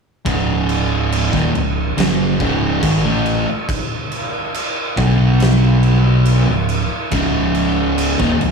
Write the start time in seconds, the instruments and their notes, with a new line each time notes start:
0.25 fingered electric bass C#1, distorted electric guitar C#2 G#2 C#3, kick, crash
0.69 crash
1.12 crash
1.32 fingered electric bass D#1, distorted electric guitar D#2 A#2, kick, snare
1.54 fingered electric bass C#1, distorted electric guitar C#2 G#2, crash
1.96 fingered electric bass F#1, distorted electric guitar F#2 C#3 F#3, snare, crash
2.40 fingered electric bass C#1, distorted electric guitar C#2 G#2 C#3, kick, crash
2.82 fingered electric bass G#1, distorted electric guitar G#2 D#3, kick, crash
3.04 fingered electric bass A1, distorted electric guitar A2 E3 A3
3.26 crash
3.69 kick, crash
4.12 crash
4.54 crash
4.97 fingered electric bass B1, distorted electric guitar B2 F#3 B3, kick, crash
5.40 snare, crash
5.83 crash
6.26 crash
6.47 fingered electric bass C#1, distorted electric guitar C#2 G#2
6.69 crash
7.11 fingered electric bass C#1, distorted electric guitar C#2 G#2 C#3, kick, crash
7.55 crash
7.98 crash
8.19 fingered electric bass D#1, distorted electric guitar D#2 A#2, kick, snare
8.41 fingered electric bass C#1, distorted electric guitar C#2 G#2, crash